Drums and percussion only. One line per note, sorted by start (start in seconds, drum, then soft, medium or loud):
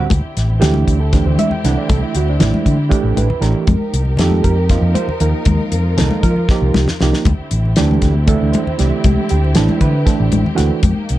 0.10 kick loud
0.10 closed hi-hat medium
0.10 high conga loud
0.10 low conga soft
0.36 snare soft
0.36 closed hi-hat medium
0.36 low conga soft
0.50 low conga soft
0.62 snare loud
0.62 closed hi-hat medium
0.62 low conga medium
0.74 high conga medium
0.88 kick medium
0.88 closed hi-hat medium
1.13 kick medium
1.13 snare soft
1.13 closed hi-hat medium
1.38 closed hi-hat medium
1.38 high conga medium
1.51 low conga medium
1.64 snare soft
1.64 closed hi-hat medium
1.89 kick loud
1.89 closed hi-hat medium
1.89 high conga medium
1.89 low conga soft
2.15 closed hi-hat medium
2.15 low conga soft
2.28 low conga soft
2.40 snare loud
2.40 closed hi-hat medium
2.40 low conga medium
2.54 high conga medium
2.66 kick medium
2.66 closed hi-hat medium
2.91 kick loud
2.91 closed hi-hat medium
3.17 closed hi-hat soft
3.17 high conga medium
3.30 low conga medium
3.42 snare soft
3.42 closed hi-hat medium
3.67 kick medium
3.67 closed hi-hat medium
3.67 high conga medium
3.67 low conga soft
3.93 closed hi-hat medium
3.93 low conga soft
4.05 low conga soft
4.17 snare loud
4.17 closed hi-hat medium
4.17 low conga medium
4.31 high conga medium
4.44 kick medium
4.44 closed hi-hat medium
4.70 kick medium
4.70 snare soft
4.70 closed hi-hat medium
4.95 closed hi-hat soft
4.95 high conga medium
5.09 low conga medium
5.20 closed hi-hat medium
5.45 kick medium
5.45 closed hi-hat medium
5.45 high conga medium
5.61 low conga soft
5.72 closed hi-hat medium
5.72 low conga soft
5.98 snare loud
5.98 closed hi-hat medium
5.98 low conga medium
6.11 high conga medium
6.23 kick medium
6.23 closed hi-hat medium
6.23 low conga soft
6.36 low conga soft
6.49 kick loud
6.49 snare medium
6.74 snare medium
6.74 high conga medium
6.74 low conga soft
6.88 snare medium
6.88 low conga medium
7.01 snare medium
7.14 snare medium
7.25 kick medium
7.25 closed hi-hat medium
7.25 high conga loud
7.25 low conga soft
7.51 closed hi-hat medium
7.51 low conga soft
7.65 low conga soft
7.76 snare loud
7.76 closed hi-hat medium
7.76 low conga medium
7.91 high conga medium
8.02 kick medium
8.02 snare soft
8.02 closed hi-hat medium
8.28 kick loud
8.28 closed hi-hat medium
8.53 closed hi-hat soft
8.53 high conga medium
8.67 low conga medium
8.79 snare soft
8.79 closed hi-hat medium
9.04 kick loud
9.04 closed hi-hat medium
9.04 high conga medium
9.04 low conga soft
9.29 closed hi-hat medium
9.29 low conga soft
9.44 low conga soft
9.55 snare loud
9.55 closed hi-hat medium
9.55 low conga medium
9.69 high conga medium
9.81 kick medium
9.81 closed hi-hat medium
10.07 kick medium
10.07 snare soft
10.07 closed hi-hat medium
10.32 closed hi-hat medium
10.32 high conga medium
10.46 low conga medium
10.58 snare soft
10.58 closed hi-hat medium
10.83 kick loud
10.83 closed hi-hat medium
10.83 high conga medium
10.83 low conga soft
11.09 closed hi-hat medium